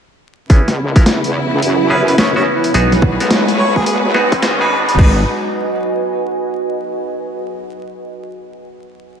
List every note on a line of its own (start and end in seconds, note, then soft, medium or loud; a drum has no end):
0.49 0.65 C#2 medium
0.49 2.72 C#3 medium
0.49 0.68 B3 loud
0.49 2.72 B3 medium
0.49 0.68 C#4 medium
0.49 2.74 E4 medium
0.49 0.68 E4 medium
0.49 2.72 E4 medium
0.49 0.68 G#4 loud
0.49 kick loud
0.49 closed hi-hat medium
0.49 riser medium
0.68 1.04 C#2 medium
0.68 snare soft
0.68 closed hi-hat soft
0.73 4.98 B4 medium
0.96 1.07 B3 medium
0.96 1.07 C#4 medium
0.96 1.07 E4 medium
0.96 1.07 A#4 medium
0.96 kick loud
0.96 closed hi-hat medium
1.00 3.65 C#5 medium
1.06 1.49 E2 loud
1.06 snare loud
1.06 closed hi-hat medium
1.24 closed hi-hat soft
1.52 1.61 C#2 medium
1.52 4.98 G#5 medium
1.62 2.45 F#2 loud
1.62 closed hi-hat medium
1.90 2.15 B3 medium
1.90 2.15 C#4 medium
1.90 2.15 E4 medium
1.90 2.15 G#4 medium
1.90 2.01 B4 medium
2.08 2.14 B4 medium
2.08 closed hi-hat soft
2.18 2.32 B3 medium
2.18 2.32 C#4 medium
2.18 2.32 E4 medium
2.18 2.32 G#4 medium
2.18 2.30 C#5 medium
2.18 snare loud
2.18 closed hi-hat medium
2.36 2.72 B3 medium
2.36 2.72 C#4 medium
2.36 2.72 E4 medium
2.36 2.72 F#4 medium
2.36 2.43 C#5 medium
2.64 closed hi-hat medium
2.74 3.17 B1 loud
2.74 4.96 G#3 medium
2.74 2.93 B3 loud
2.74 2.93 D#4 medium
2.74 4.98 F#4 medium
2.74 2.93 F#4 medium
2.74 4.96 F#4 medium
2.74 2.93 G#4 loud
2.74 4.96 B4 medium
2.74 closed hi-hat medium
2.92 snare medium
2.92 closed hi-hat soft
3.02 kick loud
3.20 3.29 B1 medium
3.20 3.31 B3 medium
3.20 3.31 D#4 medium
3.20 3.31 F#4 medium
3.20 3.31 A#4 medium
3.20 closed hi-hat medium
3.30 3.73 B1 loud
3.30 snare loud
3.30 closed hi-hat medium
3.48 closed hi-hat soft
3.59 3.73 C#5 medium
3.76 4.01 G#1 medium
3.76 3.83 G#4 medium
3.76 4.98 D#5 medium
3.76 kick medium
3.86 3.98 G#4 medium
3.86 closed hi-hat medium
4.04 4.13 G#1 loud
4.14 4.39 B3 medium
4.14 4.39 D#4 medium
4.14 4.39 F#4 medium
4.14 4.39 G#4 loud
4.14 snare medium
4.32 kick loud
4.32 closed hi-hat soft
4.43 4.97 G#1 loud
4.43 4.56 B3 medium
4.43 4.56 D#4 medium
4.43 4.56 F#4 medium
4.43 4.56 G#4 medium
4.43 snare loud
4.43 closed hi-hat medium
4.60 4.96 B3 medium
4.60 4.96 D#4 medium
4.60 4.96 F#4 medium
4.60 4.96 G#4 medium
4.60 4.79 B4 medium
4.88 4.95 B4 medium
4.88 closed hi-hat medium
4.98 5.25 G#1 loud
4.98 5.25 G#3 medium
4.98 5.21 B3 medium
4.98 5.21 D#4 medium
4.98 7.19 F#4 medium
4.98 5.25 F#4 medium
4.98 5.21 F#4 medium
4.98 5.21 G#4 loud
4.98 5.10 B4 medium
4.98 5.25 B4 medium
4.98 kick loud
4.98 crash medium
5.09 7.19 B4 medium
5.19 7.19 D#5 medium
5.25 7.19 G#5 medium